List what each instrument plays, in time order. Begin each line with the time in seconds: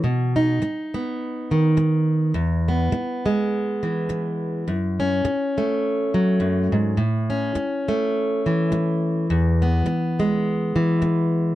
0.04 steel-string acoustic guitar B2
0.36 steel-string acoustic guitar D#4
0.62 muted steel-string acoustic guitar stroke
0.94 steel-string acoustic guitar B3
1.51 steel-string acoustic guitar D#3
1.77 muted steel-string acoustic guitar stroke
2.34 steel-string acoustic guitar E2
2.68 steel-string acoustic guitar B3
2.92 muted steel-string acoustic guitar stroke
3.26 steel-string acoustic guitar G#3
3.83 steel-string acoustic guitar E3
4.09 muted steel-string acoustic guitar stroke
4.68 steel-string acoustic guitar F#2
5.00 steel-string acoustic guitar C#4
5.25 muted steel-string acoustic guitar stroke
5.58 steel-string acoustic guitar A3
6.14 steel-string acoustic guitar F#3
6.40 steel-string acoustic guitar F#2
6.72 steel-string acoustic guitar G#2
6.97 steel-string acoustic guitar A2
7.30 steel-string acoustic guitar C#4
7.55 muted steel-string acoustic guitar stroke
7.88 steel-string acoustic guitar A3
8.46 steel-string acoustic guitar E3
8.72 muted steel-string acoustic guitar stroke
9.30 steel-string acoustic guitar E2
9.62 steel-string acoustic guitar B3
9.86 muted steel-string acoustic guitar stroke
10.19 steel-string acoustic guitar G#3
10.76 steel-string acoustic guitar E3
11.02 muted steel-string acoustic guitar stroke